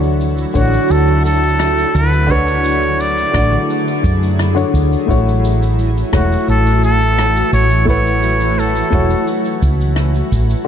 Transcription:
Already playing: D2 D3 F#3 A3 D4 E4 F#4 C#5
0.03 cabasa
0.21 cabasa
0.38 cabasa
0.54 A1 D3 D4 F#4 C#5, kick, cabasa
0.73 cabasa
0.90 D2 A4, cabasa
1.07 cabasa
1.25 A4, cabasa
1.43 cabasa
1.59 cross-stick, cabasa
1.78 cabasa
1.95 D2 B4, cabasa
2.13 cabasa
2.27 D3 D4 F#4 G#4 C#5, kick, cabasa
2.31 B4
2.48 cabasa
2.64 cabasa
2.83 cabasa
3.00 D5, cabasa
3.18 cabasa
3.32 A1 D3 D4 F#4, kick, cross-stick, cabasa
3.36 D5
3.52 cabasa
3.70 cabasa
3.88 cabasa
4.04 F#2, kick, cabasa
4.23 cabasa
4.39 cross-stick, cabasa
4.55 D3 D4 F#4 C#5, cabasa
4.74 D2, kick, cabasa
4.93 cabasa
5.06 A1 E3 A3 E4 F#4, kick
5.10 C#5, cabasa
5.28 cabasa
5.45 cabasa
5.62 cabasa
5.79 cabasa
5.97 cabasa
6.12 E1 A3 E4 F#4 C#5, kick, cross-stick, cabasa
6.32 cabasa
6.48 A1 A4, cabasa
6.67 cabasa
6.84 A4, cabasa
7.01 cabasa
7.18 cross-stick, cabasa
7.37 cabasa
7.53 A1 C#5, cabasa
7.70 cabasa
7.85 A3 E4 F#4 C#5, kick, cabasa
7.90 B4
8.07 cabasa
8.23 cabasa
8.41 cabasa
8.59 A4, cabasa
8.76 cabasa
8.90 E1 A3 E4 F#4, kick, cabasa
8.95 C#5
9.10 cabasa
9.27 cabasa
9.45 cabasa
9.62 C#2, kick, cabasa
9.81 cabasa
9.96 cross-stick, cabasa
10.15 cabasa
10.32 A1, kick, cabasa
10.50 cabasa

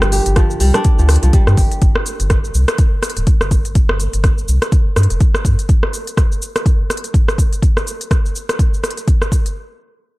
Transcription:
Already playing: F3 G3 D4
0.02 G1, cross-stick, cabasa
0.12 G4, open hi-hat, cabasa
0.26 G1, closed hi-hat, cabasa
0.36 F3, kick, cross-stick, closed hi-hat, cabasa
0.50 cabasa
0.60 C2 G3, open hi-hat, cabasa
0.74 D4, cross-stick, closed hi-hat, cabasa
0.84 kick, closed hi-hat, cabasa
0.99 D2 F3, cabasa
1.09 cross-stick, open hi-hat, cabasa
1.16 closed hi-hat
1.23 C2 F3, closed hi-hat, cabasa
1.33 G3, kick, closed hi-hat, cabasa
1.47 G2, cross-stick, cabasa
1.57 G1 G4, kick, open hi-hat, cabasa
1.72 closed hi-hat, cabasa
1.82 G1, kick, closed hi-hat, cabasa
1.96 cross-stick
2.06 closed hi-hat, cabasa
2.20 G1, closed hi-hat, cabasa
2.30 kick, cross-stick, closed hi-hat, cabasa
2.44 cabasa
2.54 C2, cabasa
2.68 cross-stick, closed hi-hat, cabasa
2.78 kick, closed hi-hat, cabasa
3.03 cross-stick, closed hi-hat, cabasa
3.10 closed hi-hat
3.17 D1, closed hi-hat, cabasa
3.27 kick, closed hi-hat, cabasa
3.41 G1, cross-stick, cabasa
3.51 kick, closed hi-hat, cabasa
3.65 closed hi-hat, cabasa
3.75 kick, closed hi-hat, cabasa
3.89 G1, cross-stick
4.00 closed hi-hat, cabasa
4.13 G1, closed hi-hat, cabasa
4.24 kick, cross-stick, closed hi-hat, cabasa
4.38 cabasa
4.48 C2, cabasa
4.62 cross-stick, closed hi-hat, cabasa
4.72 kick, closed hi-hat, cabasa
4.96 G2, cross-stick, closed hi-hat, cabasa
5.03 closed hi-hat
5.10 F1, closed hi-hat, cabasa
5.21 kick, closed hi-hat, cabasa
5.35 cross-stick, cabasa
5.45 G2, kick, closed hi-hat, cabasa
5.59 closed hi-hat, cabasa
5.69 kick, closed hi-hat, cabasa
5.83 cross-stick
5.93 closed hi-hat, cabasa
6.07 closed hi-hat, cabasa
6.17 kick, cross-stick, closed hi-hat, cabasa
6.32 cabasa
6.42 cabasa
6.56 cross-stick, closed hi-hat, cabasa
6.66 kick, closed hi-hat, cabasa
6.90 cross-stick, closed hi-hat, cabasa
6.97 closed hi-hat
7.04 closed hi-hat, cabasa
7.14 kick, closed hi-hat, cabasa
7.28 cross-stick, cabasa
7.38 kick, closed hi-hat, cabasa
7.53 closed hi-hat, cabasa
7.63 kick, closed hi-hat, cabasa
7.77 cross-stick, cabasa
7.87 closed hi-hat, cabasa
8.01 closed hi-hat, cabasa
8.11 kick, cross-stick, closed hi-hat, cabasa
8.26 cabasa
8.36 cabasa
8.49 cross-stick, closed hi-hat, cabasa
8.59 kick, closed hi-hat, cabasa
8.74 cabasa
8.84 cross-stick, closed hi-hat, cabasa
8.91 closed hi-hat
8.97 closed hi-hat, cabasa
9.08 kick, closed hi-hat, cabasa
9.22 cross-stick, cabasa
9.32 kick, closed hi-hat, cabasa
9.46 closed hi-hat, cabasa

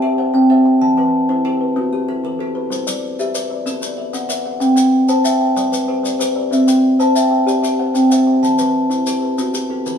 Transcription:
Already playing: G4 D5 G5
0.02 G4 E5
0.18 C5 F#5
0.34 C4 G5
0.50 C5 E5 F#5
0.65 G5
0.81 E3 A5
0.97 E3 B4
1.29 E4 C5
1.45 G4 B4
1.61 B4
1.76 B3 F#4
1.93 B3 G4
2.08 E4 A4
2.24 E3 B4
2.39 E4 G4 A4
2.55 B4
2.70 G3 C5, maracas
2.87 G3 D5, maracas
3.19 G4 E5, maracas
3.35 B4 D5, maracas
3.50 D5
3.66 B3 A4, maracas
3.82 B3 D5, maracas
3.97 B4 E5
4.13 B3 F#5, maracas
4.29 B4 D5 E5, maracas
4.46 F#5
4.60 C4 G5, maracas
4.76 C4 G5, maracas
5.08 C5 A5, maracas
5.24 E5 G5, maracas
5.41 G5
5.56 G3 D5, maracas
5.72 G3 B4, maracas
5.88 G4 C5
6.03 G3 D5, maracas
6.19 G4 B4 C5, maracas
6.36 D5
6.51 C4 E5, maracas
6.68 C4 G5, maracas
6.99 C5 A5, maracas
7.16 E5 G5, maracas
7.31 G5
7.47 G4 D5, maracas
7.63 G4 E5, maracas
7.79 C5 F#5
7.94 C4 G5, maracas
8.10 C5 E5 F#5, maracas
8.27 G5
8.43 E3 A5, maracas
8.58 E3 B4, maracas
8.90 E4 C5, maracas
9.06 G4 B4, maracas
9.22 B4
9.38 B3 F#4, maracas
9.54 B3 G4, maracas
9.70 E4 A4
9.86 E3 B4, maracas

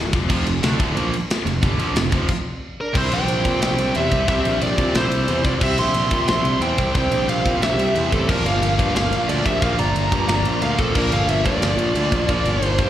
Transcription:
Already playing: D1
0.13 F1 F2 C3 F3, kick, ride
0.29 F1 F2 C3 F3, kick, crash
0.46 F1 F2 C3, ride
0.63 D2 D3 A3 D4, snare, ride
0.79 D1 D2 A2 D3, kick, ride
0.95 A#1 A#2 F3 A#3, ride
1.14 ride
1.30 snare, ride
1.46 F1 F2 C3, ride
1.61 G1 G2 D3 G3, kick, ride
1.78 A#1 A#2 F3 A#3, ride
1.94 F1 F2 C3, snare, ride
2.11 F1 F2 C3 F3, kick, ride
2.28 kick, crash
2.80 D4 A#4
2.93 C2 C3 G3 C4 E4 C5, kick, crash
3.12 A#1 C5 G5, ride
3.28 A#1, ride
3.43 A#2 C3 G3 C4, kick, ride
3.61 A#1 C5 G5, snare, ride
3.78 C2, ride
3.93 E2 C3 G3 C4 E5, ride
3.98 G4
4.12 C2, kick, ride
4.27 C2 C3 G3 C4 G4 E5, kick, ride
4.45 A#1, ride
4.61 A#1 G4 D5, ride
4.77 A#2 C3 G3 C4, kick, ride
4.95 A#1 E4 C5, snare, ride
5.11 C2, ride
5.27 E2 C3 G3 C4, ride
5.44 C2 F4 D5, kick, ride
5.59 C2 C3 G3 C4 G4 E5, kick, crash
5.78 A#1 E5 C6, ride
5.94 A#1, ride
6.10 A#2 C3 G3 C4, kick, ride
6.28 A#1 E5 C6, snare, ride
6.44 C2, ride
6.60 E2 C3 G3 C4 C5 G5, ride
6.78 C2, kick, ride
6.94 C2 C3 G3 C4 C5 G5, kick, ride
7.10 A#1, ride
7.28 A#1 C5 F5, ride
7.44 A#2 C3 G3 C4, kick, ride
7.60 A#1 G4 E5, snare, ride
7.78 C2, ride
7.94 E2 C3 G3 C4, ride
8.12 A1 C4 A4, kick, ride
8.28 A#1 A#2 F3 A#3 D4 A#4, kick, crash
8.45 G1 A#4 F5, ride
8.61 G1, ride
8.78 G2 A#2 F3 A#3, kick, ride
8.95 G1 A#4 F5, snare, ride
9.11 A#1, ride
9.28 D2 A#2 F3 A#3 F4 D5, ride
9.45 A#1 G4 E5, kick, ride
9.61 A#1 A#2 F3 A#3 A#4 F5, kick, ride
9.79 G1 D5 A#5, ride
9.95 G1, ride
10.12 G2 A#2 F3 A#3, kick, ride
10.28 G1 D5 A#5, snare, ride
10.44 A#1, ride
10.62 D2 A#2 F3 A#3 A#4 F5, ride
10.78 A#1 C4 A4, kick, ride
10.95 A#1 A#2 F3 A#3 D4 A#4, kick, crash
11.11 G1 A4 F5, ride
11.27 G1 A#4 E5, ride
11.45 G2 A#2 F3 A#3 F4 D5, kick, ride
11.62 G1, snare, ride
11.78 A#1, ride
11.94 D2 A#2 F3 A#3, ride
12.12 A#1, kick, ride
12.27 A#1 A#2 F3 A#3, kick, ride
12.45 G1, ride
12.61 G1 D#4 C5, ride
12.78 G2 A#2 F3 A#3, kick, ride

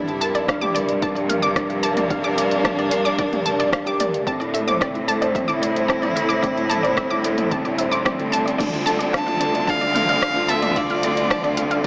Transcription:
Already playing: G2 C3 C4 E4
0.06 F3 G4, closed hi-hat
0.21 A#4 A5, closed hi-hat
0.35 D5, closed hi-hat
0.48 D4 F5, kick, cross-stick, closed hi-hat
0.61 G4 D6, closed hi-hat, mid tom
0.75 A#4 D5, closed hi-hat
0.89 D5, closed hi-hat
1.00 A#3 D4 A5, kick, closed hi-hat
1.15 G4 D5, closed hi-hat
1.29 D4 A#4 F5, closed hi-hat, mid tom
1.42 D5 D6, closed hi-hat
1.55 D4 D5, kick, cross-stick, closed hi-hat
1.70 G4, closed hi-hat
1.83 A#4 A5, closed hi-hat
1.96 D5, closed hi-hat, mid tom
2.10 D4 F5, kick, closed hi-hat
2.23 G4 D6, closed hi-hat
2.37 A#4 D5, closed hi-hat
2.50 D5, closed hi-hat
2.64 D4 A5, kick, cross-stick, closed hi-hat, mid tom
2.78 G4 D5, closed hi-hat
2.91 A#4 F5, closed hi-hat
3.05 D5 D6, closed hi-hat
3.18 D4 D5, kick, closed hi-hat
3.32 G4, closed hi-hat, mid tom
3.45 A#4 A5, closed hi-hat
3.59 D5, closed hi-hat
3.72 D4 F5, kick, cross-stick, closed hi-hat
3.86 G4 D6, closed hi-hat
3.99 A#4 D5, closed hi-hat, mid tom
4.13 D5, closed hi-hat
4.27 A2 D3 C4 A5, kick, closed hi-hat
4.40 E4 D5, closed hi-hat
4.51 G3 A4 E5, closed hi-hat
4.67 C4 C5 D6, closed hi-hat, mid tom
4.81 C4 D5, kick, cross-stick, closed hi-hat
4.95 E4, closed hi-hat
5.01 E4
5.08 A4 A5, closed hi-hat
5.21 C5 D5, closed hi-hat
5.35 C4 E5, kick, closed hi-hat, mid tom
5.48 E4 D6, closed hi-hat
5.61 A4 D5, closed hi-hat
5.76 C5, closed hi-hat
5.88 C4 A5, kick, cross-stick, closed hi-hat
6.02 E4 D5, closed hi-hat, mid tom
6.16 A4 E5, closed hi-hat
6.29 C5 D6, closed hi-hat
6.42 C4 D5, kick, closed hi-hat
6.57 E4, closed hi-hat
6.69 A4 A5, closed hi-hat, mid tom
6.83 C5 D5, closed hi-hat
6.97 C4 E5, kick, cross-stick, closed hi-hat
7.10 E4 D6, closed hi-hat
7.24 A4 D5, closed hi-hat
7.38 C5, closed hi-hat, mid tom
7.51 C4 A5, kick, closed hi-hat
7.65 E4 D5, closed hi-hat
7.78 C5 E5, closed hi-hat
7.91 C6 D6, closed hi-hat
8.05 C4 D5, kick, cross-stick, closed hi-hat, mid tom
8.19 A4, closed hi-hat
8.32 A4 A5, closed hi-hat
8.45 C4 D5, closed hi-hat
8.58 D2 D4 D5, kick, closed hi-hat, mid tom, crash
8.74 F4, closed hi-hat
8.86 A4 A5, closed hi-hat
8.99 D5, closed hi-hat
9.13 D4 F5 A5, kick, cross-stick, closed hi-hat
9.26 F4 F5, closed hi-hat, mid tom
9.39 F4 A4 D5, closed hi-hat
9.55 D5, closed hi-hat
9.67 D4 F5 A5, kick, closed hi-hat
9.81 D5, closed hi-hat
9.95 A4 F5, closed hi-hat, mid tom
10.09 D5 F5, closed hi-hat
10.22 D4 D5, kick, cross-stick, closed hi-hat
10.36 F4, closed hi-hat
10.48 A4 E5 A5, closed hi-hat
10.62 D5, closed hi-hat, mid tom
10.76 D4 D5 F5, kick, closed hi-hat
10.90 F4 F5, closed hi-hat
11.03 A4 D5, closed hi-hat
11.17 D5, closed hi-hat
11.30 D4 A5, kick, cross-stick, closed hi-hat, mid tom
11.44 D5, closed hi-hat
11.57 A4 F5, closed hi-hat
11.71 D5 F5, closed hi-hat

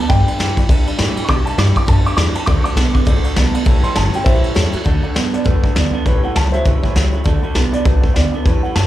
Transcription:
0.07 G2 D3 G3 D4 G4 B4 D5 G5 B5, kick, ride
0.26 D4 G4 B4 D5 G5 B5, muted upright bass stroke, ride
0.39 F#2 G2 E3 G3 D4 G4 B4 D5, snare, ride
0.57 G2 E3 D4 G4 B4 D5 G5 B5, kick, ride
0.69 G2 D3 G3 D4 G4 B4 D5 G5 B5, kick, ride
0.86 D4 G4 B4 D5 G5 B5, muted upright bass stroke, ride
0.97 G2 A2 E3 G3 D4 G4 B4 D5 G5 B5, snare, ride
1.15 G2 E3 D4 G4 B4 D5 G5 B5, muted upright bass stroke, ride
1.25 B2 G3 D4 G4 D5 B5 C#6
1.29 G2 D3 B4 D6, kick, ride
1.45 D4 G4 B4 D5 G5 A5 C#6, muted upright bass stroke, ride
1.57 G2 E3 G3 D4 G4 B4 D5 G5 A5 D6, snare, ride
1.75 G2 E3 D4 G4 B4 D5 G5 D6, muted upright bass stroke, kick, ride
1.86 F#2 G2 D3 G3 D4 G4 B4 D5 G5 A5 B5, kick, ride
2.04 D4 G4 B4 D5 G5 D6, muted upright bass stroke, ride
2.12 G3 C#6
2.16 E2 G2 E3 D4 G4 B4 D5 G5 B5 D6, snare, ride
2.34 G2 E3 D4 G4 B4 D5 G5 A5 B5, muted upright bass stroke, ride
2.46 D2 D3 A3 D4 F#4 A4 D5 F#5 A5 D6, kick, ride
2.60 A4 D5 C#6
2.64 D4 F#4 F#5 A5 D6, muted upright bass stroke, ride
2.76 B1 D3 A3 B3 D4 F#4 A4 D5 F#5 A5, snare, ride
2.93 D3 B3 D4 F#4 A4 D5 F#5 B5, muted upright bass stroke, kick, ride
3.05 C#2 D3 A3 D4 F#4 A4 D5 F#5 B5, kick, ride
3.24 D4 F#4 A4 D5 F#5 A5, muted upright bass stroke, ride
3.36 B1 D3 A3 B3 D4 F#4 A4 D5 F#5 A5, snare, ride
3.53 D3 B3 D4 F#4 A4 D5 F#5 B5, muted upright bass stroke, ride
3.64 A1 A2 E3 G3 C#4 G4 A4 C#5 E5 A5, kick, ride
3.82 G3 C#4 G4 A4 C#5 E5 A5 C6, muted upright bass stroke, ride
3.95 G1 A2 E3 F#3 G3 C#4 G4 A4 C#5 E5 A5, snare, ride
4.13 A2 F#3 G3 C#4 G4 A4 C#5 E5 G5, muted upright bass stroke, ride
4.24 A1 A2 E3 G3 C#4 G4 A4 C5 C#5 E5 A5, kick, ride
4.43 G3 C#4 G4 A4 C#5 E5 A5, muted upright bass stroke, ride
4.54 E2 A2 E3 F#3 G3 C#4 G4 A4 C#5 E5 A5, snare, ride
4.72 A2 F#3 G3 C#4 G4 A4 C#5 E5 A5, muted upright bass stroke, ride
4.84 D2 D3 A3 D4 F#4 A4 D5 F#5 A5, kick, closed hi-hat
5.02 D3 A3 D4 F#4 A4 D5 F#5 A5, muted upright bass stroke
5.14 F#2 D3 A3 B3 D4 F#4 A4 D5 F#5 B5, snare, closed hi-hat
5.32 D3 B3 D4 F#4 A4 D5 F#5 A5, muted upright bass stroke, closed hi-hat
5.44 E2 D3 A3 D4 F#4 A4 B4 D5 F#5 A5, kick, closed hi-hat
5.62 D3 A3 D4 F#4 A4 D5 F#5 A5, muted upright bass stroke, kick
5.74 D2 D3 A3 B3 D4 F#4 A4 D5 F#5, snare, closed hi-hat
5.93 D3 B3 D4 F#4 A4 D5 F#5 A5, muted upright bass stroke
6.05 A1 A2 E3 G3 C#4 G4 A4 B4 C#5 E5 A5, kick, closed hi-hat
6.23 A2 E3 G3 C#4 G4 A4 C#5 E5 F#5 A5, muted upright bass stroke
6.34 C#2 A2 F#3 G3 C#4 G4 A4 C#5 E5 A5, snare, closed hi-hat
6.52 A2 F#3 G3 C#4 G4 A4 C5 C#5 E5 A5, muted upright bass stroke, closed hi-hat
6.63 B1 A2 E3 G3 C#4 G4 A4 C#5 E5 A5, kick, closed hi-hat
6.82 A2 E3 G3 C#4 G4 A4 C#5 E5 G5, muted upright bass stroke, kick
6.95 C#2 A2 F#3 G3 C#4 G4 A4 C#5 E5 F#5, snare, closed hi-hat
7.12 A2 F#3 G3 C#4 G4 A4 C#5 E5 B5, muted upright bass stroke
7.24 D2 D3 A3 D4 F#4 A4 D5 F#5 A5, kick, closed hi-hat
7.42 D3 A3 D4 F#4 A4 D5 F#5 B5, muted upright bass stroke
7.54 B1 D3 A3 B3 D4 F#4 A4 D5 F#5 A5, snare, closed hi-hat
7.72 D3 B3 D4 F#4 A4 D5 F#5 B5, muted upright bass stroke, closed hi-hat
7.85 C#2 D3 A3 D4 F#4 A4 B4 D5 F#5 A5, kick, closed hi-hat
8.00 D3 A4 D5 F#5 A5, muted upright bass stroke, kick
8.05 A3 D4 F#4
8.13 D2 D3 A3 B3 D4 D5 F#5 B5, snare, closed hi-hat
8.17 F#4 A4
8.31 D3 B3 F#4 A4 D5 F#5 A5, muted upright bass stroke
8.35 D4
8.42 E2 A2 B4 C#5 E5 A5, kick, closed hi-hat
8.47 A2 E3 G3 C#4 G4 A4
8.61 A2 E3 G4 A4 C#5 E5 F#5 B5, muted upright bass stroke
8.66 G3 C#4
8.74 F#2 A2 F#3 C#4 G4 C#5 E5 A5, snare, closed hi-hat
8.79 A4

